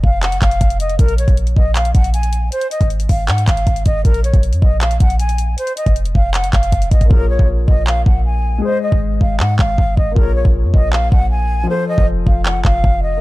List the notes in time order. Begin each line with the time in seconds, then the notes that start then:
0.04 F1 F5, kick
0.23 F#5, clap, closed hi-hat
0.32 F#1, closed hi-hat
0.42 F1 F5, kick, clap, closed hi-hat
0.51 closed hi-hat
0.61 F1, kick, closed hi-hat
0.70 closed hi-hat
0.80 D#5, closed hi-hat
0.89 closed hi-hat
0.99 A#1 A#4, kick, closed hi-hat
1.08 closed hi-hat
1.18 C#5, closed hi-hat
1.28 A#1, kick, closed hi-hat
1.37 closed hi-hat
1.47 closed hi-hat
1.56 A#1 D#5, kick
1.76 F5, clap, closed hi-hat
1.85 closed hi-hat
1.95 A#1 F#5, kick, closed hi-hat
2.04 closed hi-hat
2.14 G#5, closed hi-hat
2.23 closed hi-hat
2.33 closed hi-hat
2.52 C5, closed hi-hat
2.61 closed hi-hat
2.71 D#5, closed hi-hat
2.81 G#1, kick, closed hi-hat
2.90 closed hi-hat
3.00 closed hi-hat
3.09 G#1 F5, kick, open hi-hat
3.28 G#2 F#5, clap, closed hi-hat
3.38 closed hi-hat
3.48 G#1 F5, kick, clap, closed hi-hat
3.57 closed hi-hat
3.67 G#1, kick, closed hi-hat
3.76 closed hi-hat
3.86 G#1 D#5, kick, closed hi-hat
4.05 A#1 A#4, kick, closed hi-hat
4.14 closed hi-hat
4.24 C#5, closed hi-hat
4.34 A#1, kick, closed hi-hat
4.43 closed hi-hat
4.53 F2, closed hi-hat
4.62 A#1 D#5, kick
4.81 F5, clap, closed hi-hat
4.91 closed hi-hat
5.00 A#1 F#5, kick, closed hi-hat
5.10 closed hi-hat
5.20 G#5, closed hi-hat
5.29 closed hi-hat
5.38 closed hi-hat
5.58 C5, closed hi-hat
5.67 closed hi-hat
5.77 D#5, closed hi-hat
5.86 F1, kick, closed hi-hat
5.96 closed hi-hat
6.05 closed hi-hat
6.15 F1 F5, kick
6.34 F#5, clap, closed hi-hat
6.44 F#1, closed hi-hat
6.53 F1 F5, kick, clap, closed hi-hat
6.63 closed hi-hat
6.72 F1, kick, closed hi-hat
6.82 closed hi-hat
6.91 A1 D#5, kick, closed hi-hat
7.01 kick, closed hi-hat
7.06 A#3 F4
7.11 A#1 G#4 A#4, kick
7.16 C#5
7.30 C#5
7.39 A#1, kick
7.68 A#1 D#5, kick
7.87 F5, clap
8.06 A#1 F#5, kick
8.25 G#5
8.58 G#3 G#4
8.63 C5
8.69 D#5
8.83 D#5
8.92 G#1, kick
9.21 G#1 F5, kick
9.40 G#2 F#5, clap
9.59 G#1 F5, kick, clap
9.78 G#1, kick
9.97 G#1 D#5, kick
10.12 A#3 F4
10.16 A#1 G#4 A#4, kick
10.22 C#5
10.35 C#5
10.45 A#1, kick
10.64 F2
10.74 A#1 D#5, kick
10.93 F5, clap
11.12 A#1 F#5, kick
11.31 G#5
11.63 F3 F4
11.69 A4 C5
11.74 C5
11.88 D#5
11.98 F1, kick
12.27 F1 F5, kick
12.46 F#5, clap
12.55 F#1
12.65 F1 F5, kick, clap
12.84 F1, kick
13.03 D#5
13.17 A#3